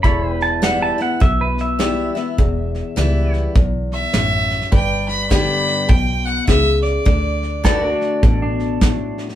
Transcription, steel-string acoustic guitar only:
0.04 1.17 E2 medium
0.62 0.97 E3 medium
0.62 0.97 G3 medium
0.62 0.98 B3 medium
0.62 0.97 E4 loud
0.98 1.21 B3 soft
0.98 1.20 E4 medium
1.20 2.33 B2 medium
1.79 2.14 E3 medium
1.79 2.14 G3 medium
1.79 2.15 B3 medium
1.79 2.14 E4 loud
2.15 2.38 B3 soft
2.15 2.37 E4 medium
2.38 3.51 E2 medium
2.96 3.53 E3 medium
2.96 3.53 G3 medium
2.96 3.53 B3 loud
2.96 3.54 E4 loud
3.55 4.12 E2 medium
4.14 4.70 F#2 loud
4.72 5.84 G2 medium
5.30 5.87 D3 medium
5.30 5.87 G3 loud
5.30 5.88 B3 medium
5.30 5.88 G4 loud
5.89 6.45 B2 medium
6.47 7.04 C#3 medium
7.05 7.62 D3 medium
7.64 8.20 D3 medium
7.64 8.21 A3 medium
7.64 8.21 D4 loud
7.64 8.21 F#4 loud
8.23 8.79 B2 medium
8.81 9.35 A2 medium

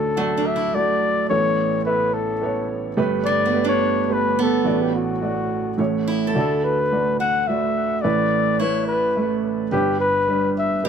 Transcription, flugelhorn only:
0.00 0.48 A4 medium
0.46 0.76 E5 medium
0.75 1.29 D5 medium
1.29 1.82 C#5 medium
1.85 2.15 B4 medium
2.13 2.70 A4 medium
3.25 3.64 D5 medium
3.69 4.14 C#5 medium
4.13 4.39 B4 medium
4.41 4.84 A4 medium
4.82 4.95 G4 medium
4.96 6.04 F#4 medium
6.38 6.65 A4 medium
6.63 7.19 B4 medium
7.20 7.49 F#5 medium
7.47 8.03 E5 medium
8.02 8.61 D5 medium
8.59 8.87 C#5 medium
8.88 9.40 B4 medium
9.72 9.98 G4 medium
10.00 10.52 B4 medium
10.58 10.87 E5 medium

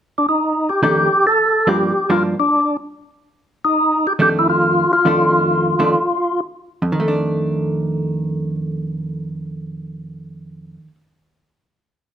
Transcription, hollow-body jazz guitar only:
0.83 1.07 F2 medium
0.83 1.07 D#3 medium
0.83 1.08 A3 medium
0.83 1.07 D4 medium
1.67 1.91 G2 medium
1.67 1.91 F3 soft
1.67 1.91 A#3 medium
1.67 1.92 D4 medium
2.10 2.34 G2 medium
2.10 2.34 F3 medium
2.10 2.34 A#3 medium
2.10 2.34 D4 medium
4.19 4.85 F2 medium
4.19 4.85 D#3 soft
4.19 4.85 A3 medium
4.19 4.85 D4 medium
5.05 5.74 F2 medium
5.05 5.74 D#3 medium
5.05 5.74 A3 medium
5.05 5.75 D4 medium
5.79 5.94 F2 medium
5.79 5.94 D#3 medium
5.79 5.94 A3 medium
5.79 5.95 D4 medium
6.82 10.77 F2 medium
6.92 10.87 D#3 medium
7.00 10.95 A3 medium
7.08 11.03 D4 medium

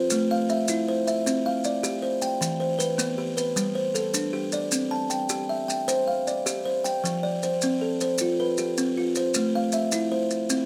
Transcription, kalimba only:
0.00 0.30 F4 medium
0.00 0.30 C5 medium
0.12 0.50 A3 medium
0.31 0.88 F5 medium
0.50 1.06 E5 medium
0.69 1.07 E4 medium
0.88 1.46 C5 medium
1.07 1.46 E5 medium
1.26 1.65 C4 medium
1.46 2.03 F5 medium
1.65 2.23 D5 medium
1.83 2.22 G4 medium
2.02 2.59 C5 medium
2.22 2.61 G5 medium
2.41 2.80 E3 medium
2.60 3.18 C5 medium
2.79 3.36 B4 medium
2.98 3.37 B3 medium
3.18 3.76 G4 medium
3.37 3.76 B4 medium
3.56 3.95 G3 medium
3.75 4.34 C5 medium
3.95 4.53 A4 medium
4.14 4.53 D4 medium
4.33 4.92 G4 medium
4.53 4.92 D5 medium
4.72 5.11 C4 medium
4.91 5.49 A5 medium
5.10 5.67 G5 medium
5.30 5.69 G4 medium
5.49 6.07 E5 medium
5.68 6.27 G5 medium
5.88 6.27 C5 medium
6.08 6.65 F5 medium
6.27 6.85 D5 medium
6.46 6.85 G4 medium
6.66 7.23 C5 medium
6.84 7.23 G5 medium
7.04 7.42 F3 medium
7.23 7.81 D5 medium
7.43 8.01 C5 medium
7.63 8.01 C4 medium
7.81 8.39 A4 medium
8.02 8.59 C5 medium
8.21 8.59 F4 medium
8.40 8.97 B4 medium
8.58 9.16 G4 medium
8.78 9.16 C4 medium
8.98 9.55 F4 medium
9.17 9.55 C5 medium
9.36 9.74 A3 medium
9.55 10.12 F5 medium
9.73 10.31 E5 medium
9.93 10.31 E4 medium
10.12 10.66 C5 medium
10.50 10.66 C4 medium

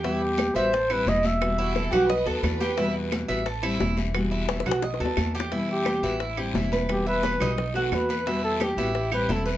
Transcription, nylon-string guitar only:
0.04 0.54 B2 medium
0.04 0.55 E3 medium
0.04 0.55 G3 medium
0.04 0.55 B3 medium
0.56 0.72 E3 medium
0.56 0.72 G3 medium
0.56 0.72 B3 medium
0.56 0.72 F#4 medium
0.73 muted nylon-string guitar stroke medium
0.90 1.06 G3 medium
0.90 1.07 C4 medium
0.90 1.06 E4 medium
1.07 1.40 E3 soft
1.07 1.40 G3 medium
1.07 1.41 C4 medium
1.07 1.41 E4 medium
1.41 1.91 B2 medium
1.41 1.92 E3 medium
1.41 1.91 G3 medium
1.41 1.91 B3 medium
1.41 1.90 F#4 medium
1.92 2.09 E3 medium
1.92 2.09 G3 soft
1.92 2.08 B3 medium
1.92 2.08 F#4 medium
2.09 muted nylon-string guitar stroke soft
2.26 2.42 D#3 medium
2.26 2.42 A3 medium
2.26 2.43 B3 medium
2.26 2.42 F#4 medium
2.43 2.77 D#3 medium
2.43 2.77 A3 soft
2.43 2.77 B3 soft
2.43 2.78 F#4 medium
2.77 3.28 B2 medium
2.77 3.29 E3 medium
2.77 3.29 G3 medium
2.77 3.28 B3 medium
2.77 3.28 F#4 medium
3.29 3.44 E3 medium
3.29 3.45 G3 medium
3.29 3.46 B3 medium
3.29 3.45 F#4 medium
3.46 muted nylon-string guitar stroke medium
3.63 3.79 G3 medium
3.63 3.80 C4 medium
3.63 3.79 E4 medium
3.80 4.13 E3 soft
3.80 4.14 G3 soft
3.80 4.14 C4 medium
3.80 4.15 E4 medium
4.14 4.65 B2 medium
4.14 4.65 E3 medium
4.14 4.66 G3 medium
4.14 4.65 B3 medium
4.14 4.64 F#4 medium
4.66 4.82 E3 medium
4.66 4.83 G3 medium
4.66 4.82 B3 medium
4.66 4.82 F#4 medium
4.82 muted nylon-string guitar stroke medium
5.00 5.16 D#3 medium
5.00 5.17 A3 medium
5.00 5.17 B3 medium
5.00 5.17 F#4 medium
5.17 5.51 D#3 soft
5.17 5.51 A3 soft
5.17 5.51 B3 soft
5.17 5.52 F#4 medium
5.51 6.02 B2 medium
5.51 6.03 E3 medium
5.51 6.03 G3 medium
5.51 6.03 B3 medium
6.03 6.20 E3 soft
6.03 6.20 G3 medium
6.03 6.20 B3 medium
6.03 6.20 F#4 medium
6.21 muted nylon-string guitar stroke medium
6.38 6.55 G3 medium
6.38 6.55 C4 medium
6.38 6.54 E4 medium
6.55 6.88 E3 medium
6.55 6.88 G3 medium
6.55 6.89 C4 medium
6.55 6.90 E4 medium
6.88 7.40 B2 medium
6.88 7.40 E3 medium
6.88 7.39 G3 medium
6.88 7.39 B3 medium
6.88 7.38 F#4 medium
7.40 7.57 E3 medium
7.40 7.57 G3 medium
7.40 7.57 B3 medium
7.40 7.57 F#4 medium
7.58 muted nylon-string guitar stroke medium
7.74 7.90 D#3 medium
7.74 7.90 A3 medium
7.74 7.91 B3 medium
7.74 7.91 F#4 medium
7.91 8.25 D#3 soft
7.91 8.26 A3 medium
7.91 8.26 B3 soft
7.91 8.26 F#4 soft
8.26 8.77 B2 medium
8.26 8.77 E3 medium
8.26 8.78 G3 medium
8.26 8.77 B3 medium
8.26 8.76 F#4 medium
8.78 8.93 E3 soft
8.78 8.93 G3 medium
8.78 8.94 B3 medium
8.78 8.94 F#4 medium
8.95 muted nylon-string guitar stroke medium
9.11 9.28 G3 medium
9.11 9.29 C4 medium
9.11 9.28 E4 medium
9.28 9.57 E3 soft
9.28 9.57 G3 soft
9.28 9.57 C4 medium
9.28 9.57 E4 soft

